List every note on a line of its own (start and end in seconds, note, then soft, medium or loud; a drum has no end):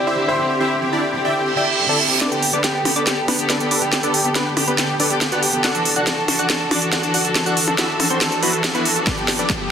0.00 0.11 D3 medium
0.00 0.11 C4 medium
0.00 0.11 E4 medium
0.00 0.11 G4 medium
0.00 0.26 D5 medium
0.07 0.15 E4 medium
0.07 0.15 G4 medium
0.07 0.15 C5 medium
0.07 0.15 E5 medium
0.17 0.32 D3 medium
0.17 0.32 C4 medium
0.17 0.32 E4 medium
0.17 0.32 G4 medium
0.17 0.26 G4 medium
0.28 0.37 E4 medium
0.28 0.37 G4 medium
0.28 2.13 C5 medium
0.28 0.37 C5 medium
0.28 0.37 E5 medium
0.39 0.46 D3 medium
0.39 0.46 C4 medium
0.39 0.46 E4 medium
0.39 0.46 G4 medium
0.39 0.47 G4 medium
0.50 0.58 G4 medium
0.60 0.75 D3 medium
0.60 0.75 C4 medium
0.60 0.69 E4 medium
0.60 0.75 E4 medium
0.60 0.69 G4 medium
0.60 0.75 G4 medium
0.60 0.69 C5 medium
0.60 0.69 E5 medium
0.71 0.79 G4 medium
0.82 0.89 D3 medium
0.82 0.89 C4 medium
0.82 0.89 E4 medium
0.82 0.89 G4 medium
0.82 0.90 G4 medium
0.93 1.08 D3 medium
0.93 1.08 C4 medium
0.93 1.01 D4 medium
0.93 1.08 E4 medium
0.93 1.01 E4 medium
0.93 1.08 G4 medium
0.93 1.01 G4 medium
0.93 1.01 D5 medium
1.03 1.12 G4 medium
1.14 1.21 D3 medium
1.14 1.21 C4 medium
1.14 1.21 E4 medium
1.14 1.21 G4 medium
1.14 1.22 G4 medium
1.25 1.32 D3 medium
1.25 1.32 C4 medium
1.25 1.32 E4 medium
1.25 1.32 G4 medium
1.25 1.33 G4 medium
1.25 1.33 D5 medium
1.25 1.33 E5 medium
1.25 1.33 G5 medium
1.35 1.50 D3 medium
1.35 1.50 C4 medium
1.35 1.50 E4 medium
1.35 1.50 G4 medium
1.35 1.44 G4 medium
1.35 reverse cymbal medium
1.46 1.54 G4 medium
1.57 1.64 D3 medium
1.57 1.64 C4 medium
1.57 1.64 E4 medium
1.57 1.64 G4 medium
1.57 1.65 G4 medium
1.57 1.65 D5 medium
1.57 1.65 E5 medium
1.57 1.65 G5 medium
1.68 1.83 D3 medium
1.68 1.83 C4 medium
1.68 1.83 E4 medium
1.68 1.83 G4 medium
1.68 1.76 G4 medium
1.78 1.87 G4 medium
1.89 2.04 D3 medium
1.89 2.04 C4 medium
1.89 2.04 E4 medium
1.89 2.04 G4 medium
1.89 1.97 A4 medium
1.89 1.97 D5 medium
1.89 1.97 E5 medium
1.89 1.97 A5 medium
2.00 2.08 G4 medium
2.10 2.18 D3 medium
2.10 2.18 C4 medium
2.10 2.18 E4 medium
2.10 2.18 G4 medium
2.10 2.19 G4 medium
2.21 2.29 D4 medium
2.21 2.29 A4 medium
2.21 2.29 B4 medium
2.21 2.29 D5 loud
2.21 2.29 D6 loud
2.21 snare soft
2.21 closed hi-hat medium
2.21 riser medium
2.32 2.47 D3 medium
2.32 2.47 B3 medium
2.32 2.47 G4 medium
2.32 2.40 G4 medium
2.32 2.47 A4 medium
2.32 2.40 G5 medium
2.32 closed hi-hat soft
2.42 2.51 G4 medium
2.42 2.51 G5 medium
2.42 open hi-hat loud
2.53 2.61 D3 medium
2.53 2.61 B3 medium
2.53 2.62 D4 medium
2.53 2.61 G4 medium
2.53 2.61 A4 medium
2.53 2.62 A4 medium
2.53 2.62 B4 medium
2.53 2.62 D5 loud
2.53 2.62 D6 medium
2.53 closed hi-hat medium
2.64 2.79 D3 medium
2.64 2.79 B3 medium
2.64 2.79 G4 medium
2.64 2.72 G4 medium
2.64 2.79 A4 medium
2.64 2.72 G5 medium
2.64 snare soft
2.64 closed hi-hat medium
2.75 2.83 G4 medium
2.75 2.83 G5 medium
2.85 2.93 D3 medium
2.85 2.93 B3 medium
2.85 2.93 G4 medium
2.85 2.94 G4 medium
2.85 2.93 A4 medium
2.85 2.94 G5 medium
2.85 open hi-hat loud
2.85 percussion blips medium
2.96 3.04 D3 medium
2.96 3.04 B3 medium
2.96 3.04 D4 medium
2.96 3.04 G4 medium
2.96 3.04 A4 medium
2.96 3.04 B4 medium
2.96 3.04 D5 medium
2.96 3.04 D6 loud
2.96 closed hi-hat medium
3.07 3.22 D3 medium
3.07 3.22 B3 medium
3.07 3.22 G4 medium
3.07 3.15 G4 medium
3.07 3.22 A4 medium
3.07 3.15 G5 medium
3.07 snare soft
3.07 closed hi-hat medium
3.17 3.26 G4 medium
3.17 3.26 G5 medium
3.28 3.36 D3 medium
3.28 3.37 B3 medium
3.28 3.36 B3 medium
3.28 3.37 D4 medium
3.28 3.37 G4 medium
3.28 3.36 G4 medium
3.28 3.36 A4 medium
3.28 3.37 B4 medium
3.28 3.37 B5 medium
3.28 open hi-hat loud
3.28 percussion blips medium
3.39 3.54 D3 medium
3.39 3.54 B3 medium
3.39 3.54 G4 medium
3.39 3.47 G4 medium
3.39 3.54 A4 medium
3.39 3.47 G5 medium
3.39 closed hi-hat medium
3.50 3.58 D4 medium
3.50 3.58 A4 medium
3.50 3.58 B4 medium
3.50 3.58 D5 medium
3.50 3.58 D6 medium
3.50 snare medium
3.50 closed hi-hat medium
3.60 3.75 D3 medium
3.60 3.75 B3 medium
3.60 3.75 G4 medium
3.60 3.69 G4 medium
3.60 3.75 A4 medium
3.60 3.69 G5 medium
3.60 closed hi-hat soft
3.71 3.79 D4 medium
3.71 3.79 A4 medium
3.71 3.79 B4 medium
3.71 3.79 D5 medium
3.71 3.79 D6 medium
3.71 open hi-hat loud
3.82 3.89 D3 medium
3.82 3.89 B3 medium
3.82 3.89 G4 medium
3.82 3.90 G4 medium
3.82 3.89 A4 medium
3.82 3.90 G5 medium
3.82 closed hi-hat medium
3.93 4.01 G4 medium
3.93 4.01 G5 medium
3.93 snare soft
3.93 closed hi-hat medium
4.03 4.18 D3 medium
4.03 4.18 B3 medium
4.03 4.12 D4 medium
4.03 4.18 G4 medium
4.03 4.12 A4 medium
4.03 4.18 A4 medium
4.03 4.12 B4 medium
4.03 4.12 D5 medium
4.03 4.12 D6 medium
4.03 closed hi-hat soft
4.14 4.22 G4 medium
4.14 4.22 G5 medium
4.14 open hi-hat loud
4.25 4.32 D3 medium
4.25 4.32 B3 medium
4.25 4.33 G4 medium
4.25 4.32 G4 medium
4.25 4.32 A4 medium
4.25 4.33 G5 medium
4.25 closed hi-hat medium
4.35 4.50 D3 medium
4.35 4.44 B3 medium
4.35 4.50 B3 medium
4.35 4.44 D4 medium
4.35 4.44 G4 medium
4.35 4.50 G4 medium
4.35 4.50 A4 medium
4.35 4.44 B4 medium
4.35 4.44 B5 medium
4.35 snare medium
4.35 closed hi-hat medium
4.46 4.54 G4 medium
4.46 4.54 G5 medium
4.57 4.64 D3 medium
4.57 4.64 B3 medium
4.57 4.65 G4 medium
4.57 4.64 G4 medium
4.57 4.64 A4 medium
4.57 4.65 G5 medium
4.57 open hi-hat loud
4.57 percussion blips medium
4.67 4.75 D3 medium
4.67 4.75 B3 medium
4.67 4.76 B3 medium
4.67 4.76 D4 medium
4.67 4.76 G4 medium
4.67 4.75 G4 medium
4.67 4.75 A4 medium
4.67 4.76 B4 medium
4.67 4.76 B5 loud
4.67 closed hi-hat medium
4.78 4.93 D3 medium
4.78 4.93 B3 medium
4.78 4.93 G4 medium
4.78 4.87 G4 medium
4.78 4.93 A4 medium
4.78 4.87 G5 medium
4.78 snare medium
4.78 closed hi-hat medium
4.89 4.97 G4 medium
4.89 4.97 G5 medium
5.00 5.07 D3 medium
5.00 5.07 B3 medium
5.00 5.08 D4 medium
5.00 5.07 G4 medium
5.00 5.07 A4 medium
5.00 5.08 A4 medium
5.00 5.08 B4 medium
5.00 5.08 D5 medium
5.00 5.08 D6 medium
5.00 open hi-hat loud
5.10 5.25 D3 medium
5.10 5.25 B3 medium
5.10 5.19 G4 medium
5.10 5.25 G4 medium
5.10 5.25 A4 medium
5.10 5.19 G5 medium
5.10 closed hi-hat medium
5.21 5.29 G4 medium
5.21 5.29 G5 medium
5.21 snare medium
5.21 closed hi-hat medium
5.32 5.47 D3 medium
5.32 5.47 B3 medium
5.32 5.40 F#4 medium
5.32 5.47 G4 medium
5.32 5.47 A4 medium
5.32 5.40 B4 medium
5.32 5.40 D5 medium
5.32 5.40 F#5 medium
5.32 5.40 F#6 loud
5.32 closed hi-hat soft
5.43 5.51 G4 medium
5.43 5.51 G5 medium
5.43 open hi-hat loud
5.53 5.61 D3 medium
5.53 5.61 B3 medium
5.53 5.61 G4 medium
5.53 5.62 G4 medium
5.53 5.61 A4 medium
5.53 5.62 G5 medium
5.53 closed hi-hat medium
5.64 5.72 F#4 medium
5.64 5.72 A4 medium
5.64 5.72 D5 medium
5.64 5.72 F#5 loud
5.64 5.72 F#6 loud
5.64 snare medium
5.64 closed hi-hat medium
5.75 5.90 E3 medium
5.75 5.90 D4 medium
5.75 5.90 F#4 medium
5.75 5.90 A4 medium
5.75 5.83 A4 medium
5.75 5.83 A5 medium
5.75 closed hi-hat soft
5.85 5.94 A4 medium
5.85 5.94 A5 medium
5.85 open hi-hat loud
5.96 6.04 E3 medium
5.96 6.04 D4 medium
5.96 6.04 F#4 medium
5.96 6.05 F#4 medium
5.96 6.04 A4 medium
5.96 6.05 A4 medium
5.96 6.05 D5 medium
5.96 6.05 F#5 loud
5.96 6.04 F#6 loud
5.96 closed hi-hat medium
6.07 6.22 E3 medium
6.07 6.22 D4 medium
6.07 6.22 F#4 medium
6.07 6.22 A4 medium
6.07 6.15 A4 medium
6.07 6.15 A5 medium
6.07 snare medium
6.07 closed hi-hat medium
6.18 6.26 A4 medium
6.18 6.26 A5 medium
6.28 6.36 E3 medium
6.28 6.36 D4 medium
6.28 6.36 F#4 medium
6.28 6.36 A4 medium
6.28 6.37 A4 medium
6.28 6.37 A5 medium
6.28 open hi-hat loud
6.28 percussion blips medium
6.39 6.46 E3 medium
6.39 6.46 D4 medium
6.39 6.46 F#4 medium
6.39 6.47 F#4 medium
6.39 6.46 A4 medium
6.39 6.47 A4 medium
6.39 6.47 D5 medium
6.39 6.47 F#5 medium
6.39 6.47 F#6 loud
6.39 closed hi-hat medium
6.50 6.65 E3 medium
6.50 6.65 D4 medium
6.50 6.65 F#4 medium
6.50 6.65 A4 medium
6.50 6.58 A4 medium
6.50 6.58 A5 medium
6.50 snare medium
6.50 closed hi-hat medium
6.60 6.69 A4 medium
6.60 6.69 A5 medium
6.71 6.79 E3 medium
6.71 6.79 D4 medium
6.71 6.79 F#4 medium
6.71 6.79 A4 medium
6.71 6.79 D5 medium
6.71 6.79 D6 medium
6.71 open hi-hat loud
6.71 percussion blips medium
6.82 6.97 E3 medium
6.82 6.97 D4 medium
6.82 6.97 F#4 medium
6.82 6.97 A4 medium
6.82 6.90 A4 medium
6.82 6.90 A5 medium
6.82 closed hi-hat medium
6.93 7.01 F#4 medium
6.93 7.01 A4 medium
6.93 7.01 D5 medium
6.93 7.01 F#5 medium
6.93 7.01 F#6 medium
6.93 snare medium
6.93 closed hi-hat medium
7.03 7.18 E3 medium
7.03 7.18 D4 medium
7.03 7.18 F#4 medium
7.03 7.18 A4 medium
7.03 7.12 A4 medium
7.03 7.12 A5 medium
7.03 closed hi-hat soft
7.14 7.22 F#4 medium
7.14 7.22 A4 medium
7.14 7.22 D5 medium
7.14 7.22 F#5 loud
7.14 7.22 F#6 loud
7.14 open hi-hat loud
7.25 7.32 E3 medium
7.25 7.32 D4 medium
7.25 7.32 F#4 medium
7.25 7.32 A4 medium
7.25 7.33 A4 medium
7.25 7.33 A5 medium
7.25 closed hi-hat medium
7.35 7.44 A4 medium
7.35 7.44 A5 medium
7.35 snare medium
7.35 closed hi-hat medium
7.46 7.61 E3 medium
7.46 7.61 D4 medium
7.46 7.54 F#4 medium
7.46 7.61 F#4 medium
7.46 7.54 A4 medium
7.46 7.61 A4 medium
7.46 7.54 D5 medium
7.46 7.54 F#5 loud
7.46 7.54 F#6 medium
7.46 closed hi-hat soft
7.57 7.65 A4 medium
7.57 7.65 A5 medium
7.57 open hi-hat loud
7.68 7.75 E3 medium
7.68 7.75 D4 medium
7.68 7.75 F#4 medium
7.68 7.76 A4 medium
7.68 7.75 A4 medium
7.68 7.76 A5 medium
7.68 closed hi-hat soft
7.68 percussion blips medium
7.78 7.93 E3 medium
7.78 7.93 D4 medium
7.78 7.87 E4 medium
7.78 7.87 F#4 medium
7.78 7.93 F#4 medium
7.78 7.87 A4 medium
7.78 7.93 A4 medium
7.78 7.87 E5 medium
7.78 7.87 E6 medium
7.78 snare medium
7.78 closed hi-hat medium
7.89 7.97 A4 medium
7.89 7.97 A5 medium
8.00 8.07 E3 medium
8.00 8.07 D4 medium
8.00 8.07 F#4 medium
8.00 8.07 A4 medium
8.00 8.08 A4 medium
8.00 8.08 A5 medium
8.00 open hi-hat loud
8.00 percussion blips medium
8.10 8.18 E3 medium
8.10 8.19 C4 medium
8.10 8.18 D4 medium
8.10 8.19 F#4 medium
8.10 8.18 F#4 medium
8.10 8.19 A4 medium
8.10 8.18 A4 medium
8.10 8.19 C5 loud
8.10 8.19 C6 loud
8.10 closed hi-hat medium
8.21 8.36 E3 medium
8.21 8.36 D4 medium
8.21 8.36 F#4 medium
8.21 8.29 A4 medium
8.21 8.36 A4 medium
8.21 8.29 A5 medium
8.21 snare medium
8.21 closed hi-hat medium
8.32 8.40 A4 medium
8.32 8.40 A5 medium
8.32 closed hi-hat soft
8.43 8.50 E3 medium
8.43 8.51 B3 medium
8.43 8.50 D4 medium
8.43 8.51 E4 medium
8.43 8.51 F#4 medium
8.43 8.50 F#4 medium
8.43 8.50 A4 medium
8.43 8.51 B4 medium
8.43 8.51 B5 medium
8.43 open hi-hat loud
8.53 8.68 E3 medium
8.53 8.68 D4 medium
8.53 8.68 F#4 medium
8.53 8.68 A4 medium
8.53 8.62 A4 medium
8.53 8.62 A5 medium
8.53 closed hi-hat medium
8.64 8.72 A4 medium
8.64 8.72 A5 medium
8.64 snare medium
8.64 closed hi-hat medium
8.75 8.90 E3 medium
8.75 8.83 B3 medium
8.75 8.90 D4 medium
8.75 8.83 E4 medium
8.75 8.83 F#4 medium
8.75 8.90 F#4 medium
8.75 8.90 A4 medium
8.75 8.83 B4 medium
8.75 8.83 B5 medium
8.75 closed hi-hat soft
8.85 8.94 A4 medium
8.85 8.94 A5 medium
8.85 open hi-hat loud
8.96 9.04 E3 medium
8.96 9.04 D4 medium
8.96 9.04 F#4 medium
8.96 9.04 A4 medium
8.96 9.04 A5 medium
8.96 closed hi-hat medium
9.07 9.15 D4 medium
9.07 9.15 A4 medium
9.07 9.15 B4 medium
9.07 9.15 D5 loud
9.07 9.15 D6 medium
9.07 kick loud
9.07 snare medium
9.07 closed hi-hat medium
9.17 9.32 D3 medium
9.17 9.33 B3 medium
9.17 9.32 G4 medium
9.17 9.26 G4 medium
9.17 9.32 A4 medium
9.17 9.26 G5 medium
9.17 closed hi-hat soft
9.28 9.37 G4 medium
9.28 9.37 G5 medium
9.28 snare medium
9.28 open hi-hat loud
9.39 9.46 D3 medium
9.39 9.46 B3 medium
9.39 9.47 D4 medium
9.39 9.46 G4 medium
9.39 9.46 A4 medium
9.39 9.47 A4 medium
9.39 9.47 B4 medium
9.39 9.47 D5 medium
9.39 9.47 D6 medium
9.39 closed hi-hat medium
9.50 9.65 D3 medium
9.50 9.65 B3 medium
9.50 9.58 G4 medium
9.50 9.65 G4 medium
9.50 9.65 A4 medium
9.50 9.58 G5 medium
9.50 kick loud
9.50 snare medium
9.50 closed hi-hat medium
9.60 9.69 G4 medium
9.60 9.69 G5 medium